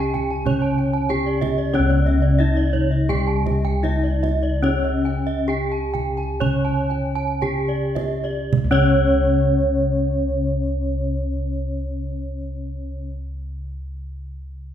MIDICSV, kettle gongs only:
0, 0, Header, 1, 2, 480
1, 0, Start_track
1, 0, Tempo, 638298
1, 1308, Time_signature, 4, 2, 24, 8
1, 1309, Tempo, 677201
1, 2269, Tempo, 742574
1, 2749, Tempo, 794702
1, 3229, Tempo, 855920
1, 3709, Tempo, 924499
1, 4189, Tempo, 1006711
1, 4669, Tempo, 1107011
1, 5149, Tempo, 1160542
1, 7721, End_track
2, 0, Start_track
2, 0, Title_t, "Kettle gongs"
2, 0, Program_c, 0, 14
2, 0, Note_on_c, 0, 37, 105
2, 0, Note_on_c, 0, 61, 81
2, 338, Note_off_c, 0, 37, 0
2, 347, Note_on_c, 0, 49, 55
2, 797, Note_off_c, 0, 61, 0
2, 823, Note_on_c, 0, 62, 42
2, 883, Note_off_c, 0, 62, 0
2, 1305, Note_on_c, 0, 61, 78
2, 1342, Note_on_c, 0, 37, 114
2, 1745, Note_off_c, 0, 49, 0
2, 1771, Note_on_c, 0, 62, 43
2, 1827, Note_off_c, 0, 62, 0
2, 2722, Note_off_c, 0, 61, 0
2, 2747, Note_on_c, 0, 62, 43
2, 2796, Note_off_c, 0, 62, 0
2, 3229, Note_on_c, 0, 61, 70
2, 3709, Note_on_c, 0, 62, 46
2, 3750, Note_off_c, 0, 62, 0
2, 4181, Note_off_c, 0, 37, 0
2, 4190, Note_on_c, 0, 49, 52
2, 4651, Note_off_c, 0, 61, 0
2, 4670, Note_on_c, 0, 62, 37
2, 4705, Note_off_c, 0, 62, 0
2, 5197, Note_on_c, 0, 37, 103
2, 5613, Note_off_c, 0, 49, 0
2, 7001, Note_off_c, 0, 37, 0
2, 7721, End_track
0, 0, End_of_file